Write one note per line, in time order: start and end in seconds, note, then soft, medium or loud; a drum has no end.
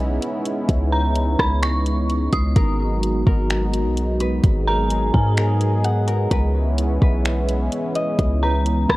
0.00 0.19 B1 loud
0.00 2.52 G#3 medium
0.00 6.27 B3 medium
0.00 2.53 C#4 medium
0.00 6.27 D#4 medium
0.00 2.53 E4 medium
0.22 closed hi-hat medium
0.45 closed hi-hat medium
0.69 1.36 C#2 loud
0.69 kick loud
0.69 closed hi-hat medium
0.93 1.36 A#5 medium
1.16 closed hi-hat medium
1.39 2.29 C#2 loud
1.39 1.61 B5 medium
1.39 kick loud
1.39 cross-stick loud
1.63 2.29 C#6 loud
1.63 finger snap loud
1.63 closed hi-hat medium
1.86 closed hi-hat medium
2.10 closed hi-hat medium
2.33 2.55 C#2 loud
2.33 2.55 D#6 medium
2.33 kick loud
2.33 closed hi-hat medium
2.56 3.24 G#1 loud
2.56 6.28 F#3 medium
2.56 8.97 G#3 medium
2.56 4.42 F#4 loud
2.56 3.26 A#4 loud
2.56 kick loud
2.56 closed hi-hat medium
3.03 closed hi-hat medium
3.27 3.87 G#1 loud
3.27 4.68 A#4 medium
3.27 kick loud
3.50 finger snap loud
3.50 closed hi-hat medium
3.74 closed hi-hat medium
3.85 4.41 B1 loud
3.97 closed hi-hat medium
4.20 6.14 B4 medium
4.20 closed hi-hat medium
4.44 5.11 G#1 loud
4.44 6.30 G#4 medium
4.44 kick loud
4.44 closed hi-hat medium
4.68 5.37 A#4 medium
4.68 5.12 A#5 medium
4.91 closed hi-hat medium
5.14 6.27 G#2 loud
5.14 5.80 G#5 medium
5.14 kick loud
5.38 6.07 A#4 loud
5.38 finger snap loud
5.38 closed hi-hat medium
5.61 closed hi-hat medium
5.85 7.45 F#5 medium
5.85 closed hi-hat medium
6.08 6.37 A#4 loud
6.08 closed hi-hat medium
6.31 6.99 C#2 loud
6.31 8.97 E3 medium
6.31 8.97 B3 medium
6.31 8.97 C#4 medium
6.31 8.97 E4 medium
6.31 7.01 B4 loud
6.31 kick loud
6.31 closed hi-hat medium
6.78 closed hi-hat medium
7.02 7.69 B1 loud
7.02 8.42 B4 loud
7.02 kick loud
7.25 finger snap loud
7.25 closed hi-hat medium
7.49 closed hi-hat medium
7.72 closed hi-hat medium
7.95 8.97 D#5 medium
7.95 closed hi-hat medium
8.19 8.86 C#2 loud
8.19 kick loud
8.19 closed hi-hat medium
8.43 8.97 B4 loud
8.43 8.87 A#5 medium
8.66 closed hi-hat medium
8.89 8.97 C#2 loud
8.89 8.97 B5 medium
8.89 kick loud
8.89 cross-stick loud